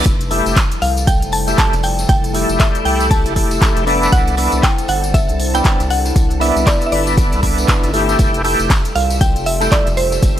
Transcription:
0.06 F1 F3 G3 E4 A4 A5, kick, closed hi-hat, tambourine
0.21 closed hi-hat, tambourine
0.31 A3 E4 G4, open hi-hat, tambourine
0.46 F1, closed hi-hat, tambourine
0.56 kick, snare, clap, closed hi-hat, tambourine
0.72 closed hi-hat, tambourine
0.82 C2 F5, open hi-hat, tambourine
0.97 closed hi-hat, tambourine
1.07 G5, kick, closed hi-hat, tambourine
1.22 F1, closed hi-hat, tambourine
1.32 A5, open hi-hat, tambourine
1.47 A3 E4 G4, closed hi-hat, tambourine
1.58 A5, kick, snare, clap, closed hi-hat, tambourine
1.73 F1, snare, closed hi-hat, tambourine
1.83 G5, open hi-hat, tambourine
1.98 snare, closed hi-hat, tambourine
2.09 F1 G5, kick, closed hi-hat, tambourine
2.24 closed hi-hat, tambourine
2.33 A3 E4 G4, open hi-hat, tambourine
2.49 F1, closed hi-hat, tambourine
2.59 E5, kick, snare, clap, closed hi-hat, tambourine
2.75 closed hi-hat, tambourine
2.85 C2 G5, open hi-hat
3.00 closed hi-hat, tambourine
3.11 A5, kick, closed hi-hat, tambourine
3.26 F1, snare, closed hi-hat, tambourine
3.36 A3 E4 G4, kick, open hi-hat, tambourine
3.51 closed hi-hat, tambourine
3.61 kick, snare, clap, closed hi-hat, tambourine
3.76 F1, snare, closed hi-hat, tambourine
3.86 B3 D4 E4, open hi-hat, tambourine
4.02 closed hi-hat, tambourine
4.12 C2 G3 D4 C5 F#5, kick, closed hi-hat, tambourine
4.28 closed hi-hat, tambourine
4.37 B3 D4 E4, open hi-hat, tambourine
4.52 C2, closed hi-hat, tambourine
4.63 G5, kick, snare, clap, closed hi-hat, tambourine
4.78 closed hi-hat, tambourine
4.88 G1 F#5, open hi-hat, tambourine
5.04 closed hi-hat, tambourine
5.14 E5, kick, closed hi-hat, tambourine
5.29 C2, closed hi-hat, tambourine
5.39 open hi-hat, tambourine
5.54 B3 D4 E4 G5, closed hi-hat, tambourine
5.64 kick, snare, clap, closed hi-hat, tambourine
5.80 C2, snare, closed hi-hat, tambourine
5.90 F#5, open hi-hat, tambourine
6.05 snare, closed hi-hat, tambourine
6.16 C2 B4, kick, closed hi-hat, tambourine
6.30 closed hi-hat, tambourine
6.40 B3 D4 E4 E5, open hi-hat, tambourine
6.56 C2, closed hi-hat, tambourine
6.66 D5, kick, snare, clap, closed hi-hat, tambourine
6.81 closed hi-hat, tambourine
6.86 E5
6.92 G1 D5, open hi-hat
7.07 closed hi-hat, tambourine
7.17 kick, closed hi-hat, tambourine
7.32 C2, snare, closed hi-hat, tambourine
7.42 B3 D4 E4, kick, open hi-hat, tambourine
7.57 closed hi-hat, tambourine
7.68 kick, snare, clap, closed hi-hat, tambourine
7.83 G1, snare, closed hi-hat, tambourine
7.93 A3 E4 G4, open hi-hat, tambourine
8.09 closed hi-hat, tambourine
8.19 F1 G3 F4 G4 A4 E6, kick, closed hi-hat, tambourine
8.34 closed hi-hat, tambourine
8.44 A3 E4 G4, open hi-hat, tambourine
8.60 F1, closed hi-hat, tambourine
8.70 kick, snare, clap, closed hi-hat, tambourine
8.85 closed hi-hat, tambourine
8.95 C2 F5, open hi-hat, tambourine
9.10 closed hi-hat, tambourine
9.21 G5, kick, closed hi-hat, tambourine
9.36 F1, closed hi-hat, tambourine
9.46 E5, open hi-hat, tambourine
9.61 A3 E4 G4, closed hi-hat, tambourine
9.72 D5, kick, snare, clap, closed hi-hat, tambourine
9.86 F1, snare, closed hi-hat, tambourine
9.97 C5, open hi-hat, tambourine
10.12 snare, closed hi-hat, tambourine
10.22 F1 G4, kick, closed hi-hat, tambourine

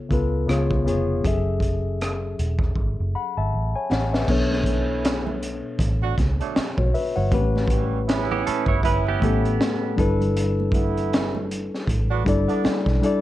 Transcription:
Already playing: C#3 B3 F4 A4 C#5
0.09 C#2 C#3 B3 F4 A4, kick, closed hi-hat
0.13 B4
0.47 C#2 C#3 B3 F4 G#4, cross-stick, closed hi-hat
0.51 C#5
0.71 kick, cross-stick
0.85 F1 C#3 B3 F4 G#4, closed hi-hat
0.89 C#5
1.23 F#1 F#3 C#4 G#4 A4, kick, closed hi-hat
1.27 E5
1.60 kick, closed hi-hat
2.01 cross-stick, closed hi-hat
2.39 E1, closed hi-hat
2.59 kick, cross-stick
2.76 G#1, kick
3.00 F#1
3.15 F#5 B5
3.37 G#1 E5 A5
3.54 A1
3.75 C#5 G#5
3.91 A1 C#5 F#5, snare
4.13 B4 E5, snare
4.27 B1 B2 B3 D4 A4, kick, crash, muted conga
4.31 C#5
4.51 snare, high conga
4.64 E3 A3 C#4 E4, kick, closed hi-hat, high conga
5.05 snare, closed hi-hat
5.27 high conga, low conga
5.43 closed hi-hat
5.79 A1, kick, closed hi-hat
6.02 F#3 D4 F#4
6.18 C#2, kick, snare, closed hi-hat, high conga
6.40 D3 F#3 A3 D4, closed hi-hat
6.56 muted fingered electric bass stroke, snare, closed hi-hat, muted conga, high conga
6.78 B1 F#4 C#5, kick, muted conga
6.94 B4 E5, open hi-hat
7.16 G1 C#5 F#5, low conga
7.30 A1 A2 A3 C4 G4 B4, kick, closed hi-hat, muted conga
7.39 C#4
7.56 snare, high conga
7.68 C#3 E3 G3 C#4, kick, closed hi-hat, high conga
8.08 E3 B3 C#4 E4, snare, closed hi-hat, muted conga
8.32 B3 G4, high conga, low conga
8.47 C#4 A4, muted fingered electric bass stroke, closed hi-hat
8.66 G1 E4 C#5, kick
8.83 E3 B3 C#4 E4 B4, kick, closed hi-hat, muted conga
9.07 B3 G4, muted conga
9.20 A1 A2 A3 B3 G4 A4, kick, closed hi-hat, high conga
9.28 C#4
9.45 closed hi-hat
9.61 snare, closed hi-hat, muted conga, high conga
9.96 G1 G3 D4 E4 A4, kick, closed hi-hat
10.00 B4
10.21 closed hi-hat, low conga
10.37 closed hi-hat, muted conga
10.60 muted conga, high conga
10.72 E3 A3 B3 E4, kick, closed hi-hat, high conga
10.97 closed hi-hat
11.13 snare, closed hi-hat, muted conga
11.35 muted conga, high conga, low conga
11.51 closed hi-hat
11.74 snare
11.87 A1, kick, closed hi-hat, muted conga
12.10 F#3 B3 D4 F#4
12.25 G1 G3 D4 E4 A4, kick, closed hi-hat, high conga
12.29 D5
12.48 D3 A3 B3 D4, closed hi-hat
12.64 muted fingered electric bass stroke, snare, closed hi-hat, muted conga, high conga
12.86 B1, kick, snare, muted conga
13.01 G3 D4 E4 A4, closed hi-hat
13.06 D5

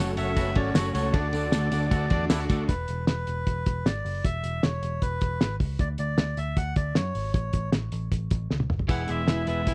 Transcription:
Already playing: F#1 F#3 C#4 F#4 A4 C#5 F#5 C#6
0.00 A3 C#4 F#4 C#5
0.17 F#1 A3 C#4 F#4 A4 C#5 E5, ride, tambourine
0.36 F#1 F#3 A3 C#4 F#4 A4 B4, kick, ride, tambourine
0.55 G#1 A3 C#4 F#4 A4 C#5 D5, kick, ride
0.74 F#1 F#3 A3 C#4 F#4 A4 C#5, snare, ride, tambourine
0.94 C#2 A3 C#4 F#4 A4 C#5, ride, tambourine
1.12 D2 D3 A3 D4 F#4 A4 D5 D6, kick, ride, tambourine
1.32 D2 A3 D4 F#4 A4 D5, ride, tambourine
1.51 D2 D3 A3 D4 F#4 A4 D5, snare, ride, tambourine
1.70 D2 A3 D4 F#4 A4 D5, snare, ride, tambourine
1.90 D2 D3 A3 D4 F#4 A4 E5, kick, ride, tambourine
2.10 E2 A3 D4 F#4 A4 D5, kick, ride
2.28 D2 D3 A3 D4 E4 F#4 A4 D5, snare, ride, tambourine
2.40 F#4
2.48 D2 A3 D4 F#4 A4 D5, kick, ride, tambourine
2.68 E1 B4, kick, closed hi-hat
2.88 E1, closed hi-hat
3.07 E1 B4, snare, closed hi-hat
3.27 E1, closed hi-hat
3.47 E1, kick, closed hi-hat
3.66 E1, kick, closed hi-hat
3.85 G#1 D5, snare, closed hi-hat
4.05 F#1, open hi-hat
4.25 E1 E5, kick, closed hi-hat
4.43 E1, closed hi-hat
4.63 E1 C#5, snare, closed hi-hat
4.83 E1, closed hi-hat
5.02 E1 B4, kick, closed hi-hat
5.21 E1, kick, closed hi-hat
5.41 G#1, snare, closed hi-hat
5.60 C#2, kick, open hi-hat
5.79 D2 D5, kick, closed hi-hat
5.98 D2 D5, closed hi-hat
6.18 D2, snare, closed hi-hat
6.37 D2 E5, closed hi-hat
6.57 D2 F#5, kick, closed hi-hat
6.76 D2 D5, kick, closed hi-hat
6.95 F#2 C#5, snare, closed hi-hat
7.15 G#1, open hi-hat
7.34 A1 C#5, kick, closed hi-hat
7.53 A1, kick, closed hi-hat
7.72 A1, snare, closed hi-hat
7.92 A1, closed hi-hat
8.12 A1, kick, closed hi-hat
8.31 A1, kick, closed hi-hat
8.50 C#2, snare
8.60 high tom
8.70 F#1, mid tom
8.79 floor tom
8.88 E1 E3 G#3 B3 E4 G#4 B4 F#5, kick, splash
9.07 E1 G#3 B3 E4 G#4 D5 E5, closed hi-hat
9.26 E1 E3 G#3 B3 E4 G#4 B4, snare, closed hi-hat
9.45 E1 G#3 B3 E4 G#4 B4 E5, closed hi-hat
9.66 E1 E3 G#3 B3 E4 G#4 B4, kick, closed hi-hat

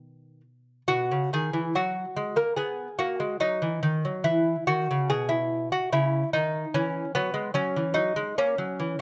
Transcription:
Already playing: B2 D#3 B3
0.88 B2 F#4
1.11 C#3
1.33 D#3 G#4
1.53 E3
1.75 F#3 F#4
2.17 G#3
2.36 A#3 A#4
2.56 B3 G#4
2.99 A#3 F#4
3.20 G#3
3.40 F#3 D#4
3.62 E3
3.83 D#3
4.05 F#3
4.24 E3 E4
4.67 D#3 F#4
4.91 C#3
5.10 B2 G#4
5.29 E4
5.72 F#4
5.92 C#3 E4
6.33 D#3 D#4
6.74 E3 C#4
7.15 F#3 B3
7.34 G#3
7.54 F#3 C#4
7.76 E3
7.94 F#3 D#4
8.16 G#3
8.38 A#3 C#4
8.58 F#3
8.80 E3

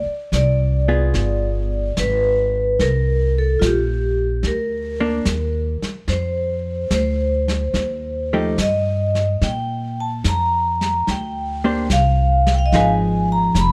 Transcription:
Already playing: D5
0.06 muted upright bass stroke
0.32 C2 D5, snare, hi-hat pedal
0.88 B3 F4 G#4
1.14 G1, brush sweep, snare
1.97 G#1 B4, snare, hi-hat pedal
2.79 C2 A#4, brush sweep, snare
3.38 A4
3.59 A#1 F4, snare, hi-hat pedal
3.67 G4
4.43 D2, brush sweep, snare
4.47 A#4
5.00 A#3 D4
5.25 D#2, snare, hi-hat pedal
5.82 muted upright bass stroke, snare
6.08 F2 C5, brush sweep, snare
6.90 D2 C5, snare, hi-hat pedal
7.48 snare
7.73 D#2, brush sweep, snare
8.33 F3 A3 D#4 G4
8.58 G2 D#5, snare, hi-hat pedal
9.15 snare
9.41 A#2 G5, brush sweep, snare
10.00 A5
10.24 F2 A#5, snare, hi-hat pedal
10.81 snare
11.07 D2 G5, brush sweep, snare
11.64 A#3 D4 G4 C5
11.90 C2 F5, snare, hi-hat pedal
12.47 snare
12.54 G5
12.59 F5
12.66 D#5
12.72 G#1 F3 D#4 G#4 B4 F5 G#5, brush sweep, snare
13.32 A#5
13.54 F1, snare, hi-hat pedal
13.60 B5

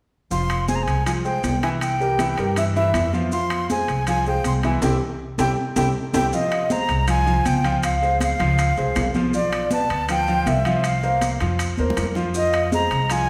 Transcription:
0.31 F1 F3 F4 F5 C6, high conga, maracas
0.50 high conga, high timbale, maracas
0.68 G#3 G#4 C5 G#5, high conga, maracas
0.75 A#5
0.83 C2 G#5
0.88 high conga, high timbale, maracas
1.06 F3 F4 F5 G#5, high conga, high timbale, maracas
1.25 G#3 G#4 C5 G5, high conga, maracas
1.43 C2, high conga, high timbale, low timbale, maracas
1.63 E3 E4 E5 G#5, high timbale, maracas
1.81 G5, high conga, high timbale, maracas
2.00 G3 G4 A#4, high conga, maracas
2.19 E3 E4 E5, high conga, high timbale, maracas
2.38 G2 G3 G4 A#4, high conga, high timbale, maracas
2.56 E3 E4 E5, high conga, high timbale, maracas
2.75 E3 E4 E5, high conga, maracas
2.94 F2, high conga, high timbale, low timbale, maracas
3.13 F3 F4 F5, high conga, maracas
3.32 F3 F4 F5 C6, high conga, maracas
3.50 high conga, high timbale, maracas
3.70 G#3 G#4 C5 G#5, high conga, maracas
3.88 C2, high conga, high timbale, maracas
4.07 F3 F4 F5 G#5, high conga, high timbale, maracas
4.26 G#3 G#4 C5 G5, high conga, maracas
4.44 C2 C6, high conga, high timbale, maracas
4.63 E3 E4 E5 G#5, high conga, high timbale, maracas
4.82 C2 C4 E4 G4 G5, high conga, high timbale, maracas
5.38 C2 C4 E4 G4 G5, high conga, high timbale, maracas
5.76 C2 C4 E4 G4 G5, high conga, high timbale, maracas
6.13 C2 C4 E4 G4 G5, high conga, high timbale, maracas
6.32 F3 F4 D#5 F5, high conga, maracas
6.51 high conga, high timbale, maracas
6.70 G#3 G#4 C5 A#5, high conga, maracas
6.89 C2, high conga, high timbale, maracas
7.07 F3 F4 F5 G#5, high conga, high timbale, maracas
7.26 F3 F4 F5, high conga, maracas
7.45 C#2 G5, high conga, high timbale, maracas
7.64 F3 F4 F5, high timbale, maracas
7.83 F5, high conga, high timbale, maracas
8.02 G#3 G#4 C5, high conga, maracas
8.20 F5, high conga, high timbale, maracas
8.39 C#2 F3 F4 F5, high conga, high timbale, maracas
8.58 high conga, high timbale, maracas
8.77 C2 G#3 G#4 C5, high conga, maracas
8.96 B1, high conga, high timbale, low timbale, maracas
9.14 F3 F4 F5, high conga, maracas
9.33 F3 F4 D5 F5, high conga, maracas
9.52 high conga, high timbale, maracas
9.71 B3 B4 D5 A5, high conga, maracas
9.90 D2, high conga, high timbale, maracas
10.09 F3 F4 F5 G5, high conga, high timbale, maracas
10.28 F3 F4 F5, high conga, maracas
10.46 C2 E5, high conga, high timbale, low timbale, maracas
10.65 F3 F4 F5, high timbale, maracas
10.84 F5, high conga, high timbale, maracas
11.03 A#3 A#4 C5, high conga, maracas
11.21 high conga, high timbale, maracas
11.40 F2 F3 F4 F5, high conga, high timbale, maracas
11.59 high conga, high timbale, maracas
11.77 D#2 A#3 A#4 C5, high conga, maracas
11.90 low conga
11.97 F2, high timbale, low timbale, maracas
12.03 low conga
12.15 F3 F4 F5, low conga, maracas
12.34 F3 F4 D#5 F5, high conga, maracas
12.53 high conga, high timbale, maracas
12.72 G#3 G#4 C5 A#5, high conga, maracas
12.91 C2, high conga, high timbale, maracas
13.10 F3 F4 F5 G#5, high conga, high timbale, maracas

